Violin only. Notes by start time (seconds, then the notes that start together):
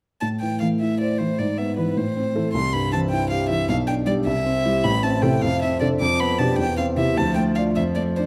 0.21 A5
0.41 G5
0.60 F5
0.80 E5
1.01 D5
1.18 C5
1.38 D5
1.58 E5
1.77 B4
1.97 C5
2.53 C6
2.73 B5
2.93 A5
3.10 G5
3.30 F5
3.49 E5
3.69 F5
3.87 G5
4.06 D5
4.25 E5
4.84 B5
5.03 A5
5.22 G5
5.42 F5
5.62 E5
5.80 D5
6.00 D6
6.20 B5
6.39 A5
6.59 G5
6.77 F5
6.98 E5
7.18 A5
7.35 G5
7.55 F5
7.76 E5
7.95 D5
8.16 C5